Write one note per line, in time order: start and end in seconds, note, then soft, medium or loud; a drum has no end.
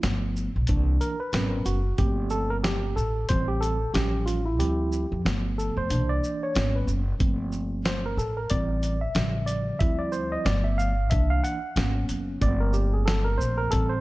0.02 0.46 G1 medium
0.02 0.49 F3 medium
0.02 0.49 A3 soft
0.02 0.49 B3 medium
0.02 snare loud
0.02 closed hi-hat medium
0.36 shaker soft
0.56 0.67 B1 medium
0.67 0.96 C2 loud
0.67 1.14 E3 medium
0.67 1.14 A#3 soft
0.67 1.15 D4 medium
0.67 kick loud
0.67 closed hi-hat medium
1.01 1.19 A#4 medium
1.01 closed hi-hat soft
1.01 shaker soft
1.20 1.67 B4 medium
1.33 1.60 G#1 loud
1.33 1.79 F#3 medium
1.33 1.79 B3 soft
1.33 1.80 C#4 medium
1.33 1.79 A#4 soft
1.33 snare loud
1.33 closed hi-hat medium
1.65 1.93 F#1 medium
1.65 2.00 F#4 medium
1.65 closed hi-hat medium
1.65 shaker medium
1.98 2.93 G1 loud
1.98 2.93 F3 medium
1.98 2.93 A3 medium
1.98 2.93 A#3 soft
1.98 2.93 C4 medium
1.98 2.32 G4 medium
1.98 kick loud
1.98 closed hi-hat medium
2.30 2.49 A4 medium
2.30 shaker soft
2.50 2.56 A#4 medium
2.64 2.94 G4 medium
2.64 snare loud
2.64 closed hi-hat medium
2.96 3.24 A1 medium
2.96 3.27 A4 medium
2.96 shaker soft
3.29 3.84 A1 loud
3.29 3.75 E3 medium
3.29 3.75 G3 soft
3.29 3.76 C4 medium
3.29 3.47 C5 loud
3.29 kick loud
3.29 closed hi-hat medium
3.48 3.62 G4 medium
3.61 3.92 A4 medium
3.61 closed hi-hat soft
3.61 shaker soft
3.94 4.60 A1 medium
3.94 4.40 F3 medium
3.94 4.41 G3 soft
3.94 4.41 C#4 medium
3.94 4.25 G4 medium
3.94 snare loud
3.94 closed hi-hat medium
4.26 4.47 F4 medium
4.26 closed hi-hat medium
4.26 shaker medium
4.46 4.59 E4 medium
4.59 5.03 D2 medium
4.59 5.05 F3 medium
4.59 5.05 G3 soft
4.59 5.06 C4 soft
4.59 5.06 E4 medium
4.59 5.21 G4 medium
4.59 closed hi-hat medium
4.92 shaker soft
5.12 5.23 F2 medium
5.25 5.68 G1 medium
5.25 5.87 F3 medium
5.25 5.87 A3 soft
5.25 5.87 B3 medium
5.25 snare loud
5.25 closed hi-hat medium
5.58 5.76 A4 medium
5.58 shaker soft
5.77 5.92 F1 medium
5.77 6.11 C5 medium
5.90 6.17 C2 loud
5.90 6.52 E3 medium
5.90 6.52 A#3 soft
5.90 6.53 D4 medium
5.90 closed hi-hat medium
6.09 6.43 D5 loud
6.24 shaker soft
6.43 6.76 C#5 medium
6.55 6.83 G#1 loud
6.55 7.01 F#3 medium
6.55 7.01 A#3 soft
6.55 7.01 B3 medium
6.55 7.01 C#4 medium
6.55 snare loud
6.55 closed hi-hat medium
6.76 6.90 B4 medium
6.87 7.15 F#1 medium
6.87 shaker medium
7.19 8.14 G1 loud
7.19 8.14 F3 medium
7.19 8.14 A3 soft
7.19 8.14 A#3 soft
7.19 8.15 C4 medium
7.19 kick loud
7.19 closed hi-hat medium
7.52 shaker soft
7.85 8.06 C5 medium
7.85 snare loud
7.85 closed hi-hat medium
8.06 8.18 A#4 medium
8.17 8.45 A1 medium
8.17 8.38 A4 medium
8.17 shaker soft
8.37 8.50 A#4 medium
8.50 9.05 A1 loud
8.50 8.97 E3 medium
8.50 8.97 G3 soft
8.50 8.97 C4 medium
8.50 8.99 D5 medium
8.50 kick medium
8.50 closed hi-hat medium
8.83 closed hi-hat soft
8.83 shaker soft
9.01 9.45 E5 medium
9.15 9.70 A1 loud
9.15 9.78 C#3 medium
9.15 9.78 F3 medium
9.15 9.78 G3 soft
9.15 snare loud
9.15 closed hi-hat medium
9.46 9.78 D5 medium
9.46 closed hi-hat medium
9.46 shaker medium
9.79 10.35 D2 loud
9.79 10.43 F3 medium
9.79 10.43 G3 soft
9.79 10.43 C4 medium
9.79 10.43 E4 medium
9.79 10.01 E5 loud
9.79 kick loud
9.79 closed hi-hat medium
9.99 10.13 D5 medium
10.12 10.33 C5 medium
10.12 shaker soft
10.32 10.45 D#5 medium
10.45 11.12 G1 loud
10.45 10.92 F3 medium
10.45 10.93 A3 medium
10.45 10.93 B3 medium
10.45 10.66 D5 medium
10.45 snare loud
10.45 closed hi-hat medium
10.64 10.77 E5 medium
10.78 11.12 F5 loud
10.78 shaker soft
11.10 11.39 C2 loud
11.10 11.57 E3 medium
11.10 11.57 A#3 medium
11.10 11.58 D4 medium
11.10 11.31 E5 loud
11.10 kick loud
11.10 closed hi-hat medium
11.30 11.43 F5 loud
11.44 12.05 F#5 loud
11.44 closed hi-hat soft
11.44 shaker soft
11.76 12.03 G#1 loud
11.76 12.39 F#3 medium
11.76 12.39 A#3 medium
11.76 12.39 B3 soft
11.76 12.39 C#4 medium
11.76 snare loud
11.76 closed hi-hat medium
12.09 12.36 F#1 medium
12.09 closed hi-hat medium
12.09 shaker medium
12.41 13.36 G1 loud
12.41 13.69 F3 medium
12.41 13.69 A3 soft
12.41 13.69 A#3 medium
12.41 13.69 C4 medium
12.41 12.60 D5 medium
12.41 kick loud
12.41 closed hi-hat medium
12.60 12.75 A#4 medium
12.73 12.94 G4 medium
12.73 shaker soft
12.93 13.07 G#4 medium
13.06 13.27 A4 medium
13.06 snare loud
13.06 closed hi-hat medium
13.24 13.39 A#4 medium
13.38 13.66 A#1 medium
13.38 13.59 C5 medium
13.38 shaker medium
13.58 13.71 A#4 medium
13.71 14.01 A1 loud
13.71 14.01 E3 medium
13.71 14.01 G3 medium
13.71 14.01 C4 medium
13.71 13.92 A4 medium
13.71 kick medium
13.71 closed hi-hat medium
13.89 14.01 C5 medium